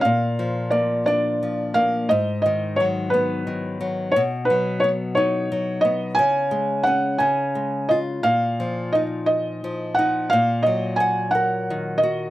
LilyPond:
<<
  \new Staff \with { instrumentName = "Felt piano" } { \time 6/8 \key ais \phrygian \tempo 4. = 58 eis''4 d''8 d''4 eis''8 | dis''8 dis''8 cis''8 b'4 r8 | cis''8 b'8 cis''8 cis''4 dis''8 | gis''4 fis''8 gis''4 dis''8 |
eis''4 dis''8 dis''4 fis''8 | eis''8 dis''8 gis''8 fis''4 dis''8 | }
  \new Staff \with { instrumentName = "Nylon-string guitar" } { \clef bass \time 6/8 \key ais \phrygian ais,8 eis8 ais8 d'8 eis8 ais8 | gis,8 dis8 fis8 b8 dis8 fis8 | b,8 fis8 b8 dis'8 fis8 b8 | cis8 gis8 cis'8 cis8 gis8 eis'8 |
ais,8 eis8 dis'4 eis8 dis'8 | ais,8 fis8 fis''8 ais'8 dis8 fis'8 | }
>>